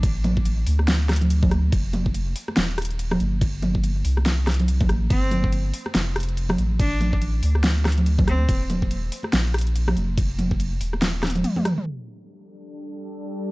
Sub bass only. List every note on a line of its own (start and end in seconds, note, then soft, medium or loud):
0.00 0.65 A1 loud
0.67 1.50 D2 loud
1.51 1.71 D2 loud
1.72 2.34 F1 loud
2.57 3.19 D#1 loud
3.20 4.03 G1 loud
4.05 4.88 C2 loud
4.89 5.09 A1 medium
5.10 5.72 G1 loud
5.95 6.57 F1 loud
6.58 7.41 A1 loud
7.43 8.26 D2 loud
8.27 8.47 D2 loud
8.49 9.10 D#1 loud
9.33 9.95 A#1 loud
9.96 10.79 F1 loud
10.80 11.44 D#1 loud